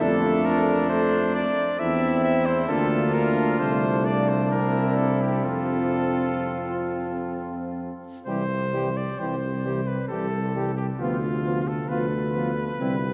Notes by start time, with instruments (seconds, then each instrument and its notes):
0.01 tuba F2, french horn A3, trombone D4, trumpet D4 A4
0.45 trumpet A#4
0.89 trombone A3, trumpet C5
1.35 trumpet D5
1.79 tuba E2, french horn C4, trombone C4, trumpet E4 E5
2.24 trumpet E5
2.46 trumpet C5
2.68 tuba D2, french horn A#3, trombone D4, trumpet F4 A4
3.14 trumpet A#4
3.60 tuba C2, french horn A3, trumpet C5
4.05 trumpet D5
4.29 trumpet C5
4.51 french horn C4, trumpet E4 A#4
4.97 trumpet A4
5.21 trumpet G4
5.44 tuba F2, trombone C4, trumpet F4 A4
8.26 tuba C2, trombone E3, french horn G3, trumpet G4 C5
8.73 trombone E3, french horn G3, trumpet G4
8.97 trumpet D5
9.19 tuba C2, trombone E3, french horn G3, trumpet G4 C5
9.65 trombone E3, french horn G3, trumpet G4
9.87 trumpet B4
10.08 tuba C2, trombone E3, french horn G3, trumpet G4 A4
10.55 trombone E3, french horn G3, trumpet G4
10.77 trumpet G4
10.99 tuba D2, trombone F3, french horn B3, trumpet F4
11.45 trombone F3, french horn B3, trumpet F4
11.68 trumpet A4
11.88 tuba D2, trombone F3, french horn B3, trumpet F4 B4
12.35 trombone F3, french horn B3, trumpet F4
12.79 tuba C2, trombone G3, french horn C4, trumpet E4